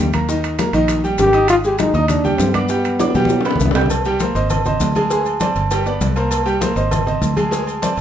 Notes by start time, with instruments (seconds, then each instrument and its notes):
Already playing: fingered electric bass D#2
0.13 grand piano A#3 A#4 A#5, high bongo, high conga, high timbale, maracas
0.29 grand piano D#3 D#4 D#5, high bongo, high conga, maracas
0.44 high conga, high timbale, maracas
0.58 grand piano A#3 A#4 A#5, high bongo, high conga, high timbale, maracas
0.73 fingered electric bass A#1, grand piano D#3 D#4 D#5, high timbale, maracas
0.88 high bongo, high conga, high timbale, maracas
1.04 grand piano G3 G4 G5, high bongo, high conga, maracas
1.18 fingered electric bass G#1, trombone G4, high bongo, low bongo, high conga, high timbale, maracas
1.33 grand piano D#4 D#5 D#6, high bongo, high conga, high timbale, maracas
1.48 trombone F4, high bongo, high conga, high timbale, maracas
1.64 grand piano G#3 G#4 G#5, trombone G4, high bongo, high conga, maracas
1.79 trombone D#4, high bongo, high conga, high timbale, maracas
1.94 fingered electric bass D#2, grand piano D#4 D#5 D#6, high conga, maracas
1.99 trombone D#4
2.08 trombone D4, high bongo, high conga, low conga, high timbale, maracas
2.24 grand piano G3 G4 G5, high bongo, high conga, low conga, maracas
2.38 fingered electric bass G2, trombone C4, high bongo, low bongo, high conga, high timbale, low timbale, maracas
2.54 trombone B3, grand piano D4 D5 D6, high bongo, high conga, high timbale, maracas
2.69 grand piano G3 G4 G5, high bongo, high conga, maracas
2.85 high bongo, high conga, high timbale, maracas
2.99 grand piano D4 D5 D6, high bongo, high conga, high timbale, maracas
3.10 high bongo
3.15 fingered electric bass B2, grand piano G3 G4 G5, high conga, maracas
3.20 high bongo
3.25 high conga
3.29 high bongo, high timbale, maracas
3.41 low bongo
3.45 grand piano B3 B4 B5, low timbale, maracas
3.51 low bongo
3.56 fingered electric bass C2, low conga
3.60 low bongo, maracas
3.65 low conga
3.71 low bongo
3.75 grand piano G4 G5 G6, low timbale, maracas
3.81 low bongo
3.86 low conga
3.90 cowbell, high conga, low agogo, maracas
4.05 grand piano G3 G4 G5, cowbell, high conga, maracas
4.20 grand piano A#3 A#4 C5, cowbell, high conga, low agogo, maracas
4.35 fingered electric bass G#1, grand piano C4 C5 D#5, cowbell, high conga, maracas
4.50 cowbell, high conga, low conga, low agogo, maracas
4.65 grand piano C4 C5 D#5, high conga, low conga, maracas
4.80 fingered electric bass D2, cowbell, high conga, low timbale, low agogo, maracas
4.95 grand piano G#3 G#4 G#5, cowbell, high conga, low agogo, maracas
5.10 grand piano G#3 G#4 G#5, cowbell, high conga, maracas
5.26 high conga, low agogo, maracas
5.40 grand piano C4 C5 D5, cowbell, high conga, low agogo, maracas
5.56 fingered electric bass G1, cowbell, low agogo, maracas
5.71 grand piano G3 G4 G5, cowbell, high conga, low agogo, maracas
5.86 grand piano B3 B4 D5, high conga, maracas
6.01 fingered electric bass C2, cowbell, high conga, low timbale, low agogo, maracas
6.16 grand piano A#3 A#4 C5, cowbell, high conga, low agogo, maracas
6.31 cowbell, high conga, low agogo, maracas
6.46 grand piano G3 G4 G5, cowbell, high conga, maracas
6.61 grand piano A#3 A#4 C5, cowbell, high conga, low agogo, maracas
6.76 fingered electric bass G#1, grand piano C4 C5 D#5, cowbell, high conga, maracas
6.91 cowbell, high conga, low conga, low agogo, maracas
7.06 grand piano C4 C5 D#5, high conga, low conga, maracas
7.21 fingered electric bass D2, cowbell, high conga, low agogo, maracas
7.36 grand piano G#3 G#4 G#5, cowbell, high conga, low agogo, maracas
7.51 grand piano G#3 G#4 G#5, cowbell, high conga, maracas
7.67 high conga, low agogo, maracas
7.82 grand piano C4 C5 D5, cowbell, high conga, low agogo, maracas
7.97 fingered electric bass G1, cowbell, low agogo